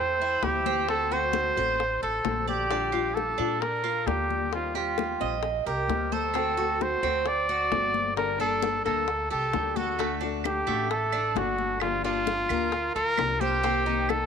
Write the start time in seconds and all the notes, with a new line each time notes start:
Already playing: E2 C4 C5
0.20 E4, high conga
0.42 D2 E3 G3 C4 E4 G4, high bongo, low bongo, high conga
0.66 C4, high conga
0.88 D3 A3 C4 F#4 A4, high bongo, high conga
1.11 A3 C4 F#4 C5, high bongo, high conga
1.33 high bongo, high conga
1.57 A1 A3 C4 F#4 C5, high bongo, high conga
1.80 muted nylon-string guitar stroke, high bongo, high conga
2.03 A1 A4, high conga
2.24 A#1 D3 A3 C4 F#4, high bongo, low bongo, high conga
2.48 G4 D5, high bongo, high conga
2.70 D3 G3 D4 F4, high bongo, high conga
2.92 G3 D4 F4, high conga
3.14 A4, high bongo, high conga
3.38 A#2 G3 D4 F4, high conga
3.61 A#4, muted nylon-string guitar stroke, high bongo, high conga
3.84 F4, high conga
4.06 D#2 D3 G3 D4 F4 G4, high bongo, low bongo, high conga
4.30 high conga
4.51 D#3 G3 C4 F4, high bongo, high conga
4.74 G3 C4 F4 G4, high bongo, high conga
4.98 high bongo, high conga
5.20 A#1 G3 C4 D#5, high bongo, high conga
5.43 muted nylon-string guitar stroke, high bongo, high conga
5.66 C2 G4 A#4, high conga
5.88 D2 G3 C4, high bongo, low bongo, high conga
6.12 A4 C5, high bongo, high conga
6.34 D3 A3 C4 F#4, high bongo, high conga
6.57 A3 C4 F#4, high conga
6.81 C5, high bongo, high conga
7.03 D2 A3 C4 F#4, high conga
7.25 D5, muted nylon-string guitar stroke, high bongo, high conga
7.49 F#4, high conga
7.72 G1 D3 A3 C4 F#4, high bongo, low bongo, high conga
7.94 high conga
8.16 D3 G3 A#3 D4 A4 A#4, high bongo, high conga
8.39 G3 A#3 D4 A4, high bongo, high conga
8.62 high bongo, high conga
8.85 D2 G3 A#3 D4 A4, high bongo, high conga
9.08 muted nylon-string guitar stroke, high bongo, high conga
9.31 C2 G4 A4, high conga
9.53 D2 G3 A#3 D4 A4, high bongo, low bongo, high conga
9.76 F#4 A4, high bongo, high conga
9.99 D3 A3 D4 F#4, high bongo, high conga
10.21 A3 D4 F#4, high conga
10.44 G4, high bongo, high conga, claves
10.67 A1 A3 D4 F#4, high conga
10.90 A4, muted nylon-string guitar stroke, high bongo, high conga
11.12 D4, high conga, claves
11.35 G1 D3 A3 D4 F#4, high bongo, low bongo, high conga
11.59 high conga
11.80 D3 F3 A#3 D4 F4, high bongo, high conga, claves
11.84 G4
12.04 F3 A#3 D4 F4 G4, high bongo, high conga
12.27 high bongo, high conga
12.49 D2 F3 A#3 D4 G4 A#4, high bongo, high conga, claves
12.72 muted nylon-string guitar stroke, high bongo, high conga
12.95 D2 F4 A#4, high conga
13.18 C2 F3 A#3 D4 G4, high bongo, low bongo, high conga, claves
13.40 G4 C5, high bongo, high conga
13.63 C3 D#3 A#3 C4 G4, high bongo, high conga
13.86 D#3 A#3 C4 D#4 G4, high conga
14.09 A4, high bongo, high conga, claves